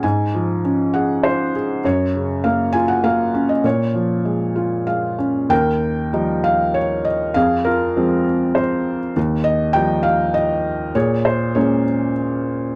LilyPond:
<<
  \new Staff \with { instrumentName = "Felt piano" } { \time 3/4 \key bes \minor \tempo 4 = 99 << { aes''4 r8 ges''8 c''4 | des''4 f''8 aes''16 ges''16 f''8. ees''16 | des''2 f''4 | \key ees \mixolydian g''4 r8 f''8 des''8 ees''8 |
f''8 bes'4. c''8. r16 | r8 ees''8 g''8 f''8 ees''4 | des''8 c''8 des''4 r4 | } \\ { r2. | r2. | r2. | bes'4. r4. |
aes'8 f'4. r4 | r2. | aes'4. r4. | } >> }
  \new Staff \with { instrumentName = "Felt piano" } { \clef bass \time 3/4 \key bes \minor aes,8 f8 des'8 aes'8 f'8 aes'8 | ges,8 des8 bes8 f'8 bes8 des'8 | bes,8 f8 aes8 f'8 aes8 des'8 | \key ees \mixolydian ees,4 <f g ees'>2 |
f,4 <f aes c'>2 | ees,4 <f g ees'>2 | bes,4 <aes bes des'>2 | }
>>